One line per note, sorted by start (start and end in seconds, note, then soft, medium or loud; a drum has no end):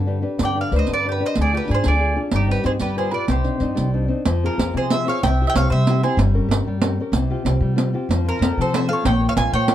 0.00 0.22 G2 medium
0.00 0.22 D3 medium
0.06 0.21 D4 soft
0.06 0.21 G4 soft
0.06 0.21 B4 soft
0.22 0.49 D4 soft
0.22 0.49 G4 soft
0.22 0.49 B4 soft
0.38 0.61 G2 medium
0.38 0.71 D3 medium
0.38 riq medium
0.43 0.57 D5 medium
0.43 0.58 G5 medium
0.55 0.71 D4 soft
0.55 0.71 G4 soft
0.55 0.72 B4 soft
0.61 0.74 D5 medium
0.61 0.74 F5 medium
0.72 0.82 D2 medium
0.72 0.98 D4 soft
0.72 0.98 G4 soft
0.72 0.98 B4 soft
0.72 riq soft
0.76 0.89 C5 medium
0.76 0.91 D#5 medium
0.87 1.20 D3 soft
0.87 riq soft
0.94 1.06 B4 medium
0.94 1.06 D5 medium
1.05 1.19 D4 soft
1.05 1.19 G4 soft
1.05 1.22 G4 medium
1.05 1.20 B4 medium
1.12 1.23 B4 medium
1.20 1.33 D4 soft
1.20 1.33 G4 soft
1.20 1.34 B4 medium
1.26 1.38 C5 medium
1.26 1.38 D#5 medium
1.36 1.58 D2 medium
1.36 1.68 D3 medium
1.36 riq soft
1.41 1.54 G#4 medium
1.41 1.55 D5 medium
1.52 1.67 D4 soft
1.52 1.67 F4 soft
1.52 1.68 G4 medium
1.52 1.67 G#4 soft
1.57 1.70 B4 medium
1.68 1.79 G#2 medium
1.68 1.93 D4 soft
1.68 1.94 F4 soft
1.68 1.94 G#4 soft
1.68 1.84 G#4 medium
1.68 riq soft
1.74 1.86 C5 medium
1.84 2.16 D2 medium
1.84 2.15 D3 medium
1.84 2.18 G#4 medium
1.84 riq soft
1.88 2.20 D5 medium
2.00 2.15 D4 soft
2.00 2.15 F4 soft
2.00 2.15 G#4 medium
2.16 2.29 D4 soft
2.16 2.29 F4 soft
2.16 2.29 G#4 soft
2.31 2.53 G1 medium
2.31 2.63 G3 medium
2.31 2.48 D#4 medium
2.31 riq medium
2.36 2.50 G4 medium
2.47 2.62 C4 soft
2.47 2.62 D#4 soft
2.47 2.62 G4 soft
2.51 2.65 G4 medium
2.51 2.66 B4 medium
2.63 2.75 G2 loud
2.63 2.76 C4 soft
2.63 2.76 D#4 soft
2.63 2.76 G4 medium
2.63 2.71 G#4 medium
2.63 2.71 C5 medium
2.63 riq soft
2.80 3.11 G1 medium
2.80 3.11 G3 medium
2.80 2.95 G4 medium
2.80 2.96 B4 medium
2.80 riq soft
2.96 3.11 F4 soft
2.96 3.11 G4 soft
2.96 3.12 G#4 medium
2.96 3.12 B4 medium
2.96 3.12 C5 medium
3.11 3.25 F4 soft
3.11 3.25 G4 soft
3.11 3.26 B4 medium
3.11 3.25 B4 medium
3.11 3.28 D5 medium
3.28 3.49 C2 medium
3.28 3.59 C3 medium
3.28 3.89 G4 medium
3.28 3.90 C5 medium
3.28 riq medium
3.44 3.59 C4 soft
3.44 3.60 D4 soft
3.44 3.60 D#4 soft
3.44 riq soft
3.60 3.71 G2 medium
3.60 3.86 C4 soft
3.60 3.86 D4 soft
3.60 3.86 D#4 medium
3.60 riq soft
3.75 4.09 C2 medium
3.75 4.07 G3 medium
3.75 riq soft
3.94 4.07 C4 soft
3.94 4.08 D4 soft
3.94 4.08 D#4 soft
4.08 4.21 C4 soft
4.08 4.22 D4 soft
4.08 4.22 D#4 soft
4.25 4.47 F2 medium
4.25 4.57 F3 medium
4.25 riq medium
4.43 4.56 C4 soft
4.43 4.57 F4 soft
4.43 4.74 F4 medium
4.43 4.57 G#4 soft
4.43 4.74 A#4 medium
4.58 4.68 F2 medium
4.58 4.84 C4 soft
4.58 4.84 F4 soft
4.58 4.84 G#4 soft
4.58 riq medium
4.74 5.05 C3 medium
4.74 5.05 F3 medium
4.74 4.91 G#4 medium
4.74 4.92 C5 medium
4.90 5.05 C4 soft
4.90 5.06 F4 soft
4.90 5.07 G#4 medium
4.90 5.07 C5 medium
4.90 5.07 E5 medium
4.90 riq medium
5.06 5.19 C4 medium
5.06 5.19 F4 soft
5.06 5.20 G#4 medium
5.06 5.22 C#5 medium
5.06 5.23 F5 medium
5.23 5.44 C2 medium
5.23 5.54 C3 medium
5.23 5.46 E5 medium
5.23 5.45 G5 medium
5.23 riq medium
5.40 5.56 C4 soft
5.40 5.56 E4 soft
5.40 5.57 G4 soft
5.47 5.54 E5 medium
5.47 5.56 G5 loud
5.55 5.65 C2 medium
5.55 5.82 C4 soft
5.55 5.82 E4 soft
5.55 5.82 G4 soft
5.55 5.70 C#5 medium
5.55 5.71 F5 loud
5.55 riq medium
5.70 6.01 C3 medium
5.70 6.03 G3 medium
5.70 6.00 C5 medium
5.70 6.01 E5 medium
5.87 6.02 C4 medium
5.87 6.03 E4 soft
5.87 6.03 G4 medium
5.87 riq medium
6.03 6.16 C4 medium
6.03 6.16 E4 soft
6.03 6.16 G4 medium
6.03 6.18 G#4 medium
6.03 6.18 C5 medium
6.17 6.38 G1 loud
6.17 6.49 G3 medium
6.17 riq medium
6.34 6.49 C#4 soft
6.34 6.50 G4 soft
6.34 6.50 A#4 medium
6.49 6.59 G1 loud
6.49 6.75 C#4 soft
6.49 6.76 G4 soft
6.49 6.76 A#4 soft
6.49 riq medium
6.64 6.96 G2 medium
6.64 6.97 G3 medium
6.82 6.99 C#4 soft
6.82 7.00 G4 soft
6.82 7.00 A#4 medium
6.82 riq medium
7.00 7.12 C#4 medium
7.00 7.12 G4 soft
7.00 7.12 A#4 soft
7.12 7.33 C2 medium
7.12 7.45 C3 medium
7.12 riq medium
7.30 7.45 C4 soft
7.30 7.45 F4 soft
7.30 7.46 G4 soft
7.45 7.56 C2 medium
7.45 7.72 C4 soft
7.45 7.72 F4 soft
7.45 7.72 G4 soft
7.45 riq medium
7.61 7.92 C3 medium
7.61 7.93 G3 medium
7.76 7.92 C4 soft
7.76 7.93 F4 soft
7.76 7.94 G4 medium
7.76 riq medium
7.93 8.06 C4 soft
7.93 8.07 F4 soft
7.93 8.07 G4 medium
8.09 8.30 F2 medium
8.09 8.41 F3 medium
8.09 riq medium
8.25 8.41 C4 soft
8.25 8.41 F4 soft
8.25 8.60 A#4 medium
8.25 8.52 C5 soft
8.30 8.58 F4 medium
8.40 8.51 F2 medium
8.40 8.68 C4 soft
8.40 8.68 F4 soft
8.40 8.68 A4 medium
8.40 riq medium
8.57 8.89 C3 medium
8.57 8.89 F3 medium
8.57 8.74 A4 medium
8.62 8.75 C5 medium
8.73 8.88 C4 medium
8.73 8.89 F4 soft
8.73 8.89 A4 medium
8.73 8.90 C5 medium
8.73 8.88 E5 medium
8.73 riq medium
8.89 9.02 C4 soft
8.89 9.03 F4 medium
8.89 9.03 A4 medium
8.89 9.04 F5 medium
8.93 9.06 C#5 medium
9.03 9.26 A#1 loud
9.03 9.35 A#3 medium
9.03 9.27 C#5 medium
9.03 9.28 G5 medium
9.03 riq medium
9.20 9.35 F4 soft
9.20 9.35 A#4 soft
9.20 9.36 C#5 soft
9.29 9.32 C#5 medium
9.29 9.33 F5 medium
9.36 9.47 A#1 medium
9.36 9.62 F4 medium
9.36 9.62 A#4 soft
9.36 9.63 C#5 medium
9.36 9.53 F5 loud
9.36 9.52 G#5 loud
9.36 riq medium
9.52 9.75 A#2 medium
9.52 9.75 F3 medium
9.52 9.75 C#5 medium
9.52 9.75 G5 loud
9.68 9.75 F4 medium
9.68 9.75 A#4 medium
9.68 9.75 C#5 medium
9.68 riq medium